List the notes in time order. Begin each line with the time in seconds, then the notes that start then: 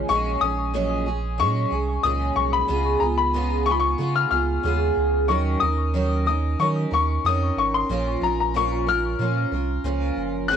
0.08 A#1 A#2 F#3 G#3 C#4 G#4 C#6
0.41 A#1 G#3 C#4 G#4 D#6
0.74 A#2 F#3 G#3 C#4 G#4
1.06 G#3 C#4 G#4
1.38 A#2 F#3 G#3 C#4 G#4 C#6
1.71 C2 G#3 C#4 G#4
2.03 C#2 A#2 F#3 G#3 C#4 G#4 D#6
2.36 C2 C#6
2.53 B5
2.68 C#2 C#3 G#3 B3 F4 G#4
3.00 C#2 B3 F4 G#4 A#5
3.18 B5
3.33 C#3 G#3 B3 F4 G#4
3.66 B3 F4 G#4 C#6
3.71 B5
3.80 C#6
3.98 C#3 G#3 B3 F4 G#4
4.16 F6
4.31 C#2 B3 F4 G#4 F6
4.63 D#2 C#3 G#3 B3 F4 G#4
4.97 C#2
5.28 D#2 D#3 F#3 C#4 D#4 A#4 C#6
5.60 D#2 C#4 D#4 A#4 D#6
5.94 D#3 F#3 C#4 D#4 A#4
6.26 C#4 D#4 A#4 D#6
6.59 D#3 F#3 C#4 D#4 A#4 C#6
6.91 D#2 C#4 D#4 A#4 C#6
7.24 F2 D#3 C#4 D#4 A#4 D#6
7.56 G#1 C#6
7.74 C6
7.89 A#1 A#2 F3 C#4 F4 A#4
8.21 A#1 C#4 F4 A#4 A#5
8.40 A#5
8.54 A#2 F3 C#4 F4 A#4 C#6
8.87 C#4 F4 A#4 F6
9.19 A#2 F3 C#4 F4 A#4
9.52 C2 C#4 F4 A#4
9.84 C#2 A#2 F3 C#4 F4 A#4
10.17 F#1
10.48 G#1 G#2 D#3 F#3 C4 F#4 G#4 F#6